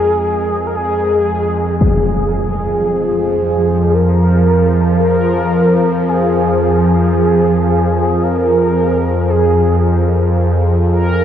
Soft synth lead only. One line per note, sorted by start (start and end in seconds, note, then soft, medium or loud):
0.00 0.66 G#4 loud
0.67 0.77 A#4 medium
0.75 1.82 G#4 medium
1.83 3.95 G#4 medium
3.94 5.01 A#4 loud
5.01 6.10 A#4 loud
6.08 8.24 G#4 medium
8.23 9.31 A#4 medium
9.30 10.11 G#4 medium
10.92 11.24 A#4 medium